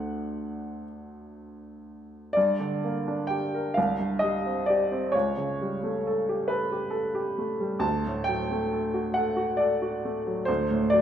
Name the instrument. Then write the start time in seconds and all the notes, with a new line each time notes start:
upright piano
Already playing: D2 A3 D4 A4 F#5
2.33 G2 D5
2.60 D3
2.84 A#3
3.08 D4
3.27 G4 G5
3.55 A#4
3.74 C2 F5
4.00 G2
4.19 G3 D#5
4.46 C4
4.66 G4 D5
4.92 C4
5.12 C#2 C#5
5.38 C#3
5.62 G3
5.83 A3
6.07 A4
6.29 G4
6.48 A4 B4
6.72 G4
6.90 A4
7.15 G4
7.38 A3
7.60 G3
7.79 D2 A5
8.07 A2
8.24 F#3 G5
8.51 A3
8.73 A4
8.94 F#4
9.14 A4 F#5
9.37 F#4
9.57 A4 D5
9.82 F#4
10.05 A3
10.27 F#3
10.45 D2 C5
10.71 A2
10.90 F#3 D5